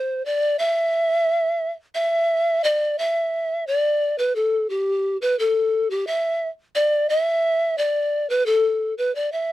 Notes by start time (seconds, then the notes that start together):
Already playing: C5
0.25 D5
0.59 E5
1.95 E5
2.64 D5
2.99 E5
3.67 D5
4.18 B4
4.36 A4
4.70 G4
5.22 B4
5.39 A4
5.90 G4
6.07 E5
6.75 D5
7.09 E5
7.78 D5
8.30 B4
8.46 A4
8.98 B4
9.15 D5
9.32 E5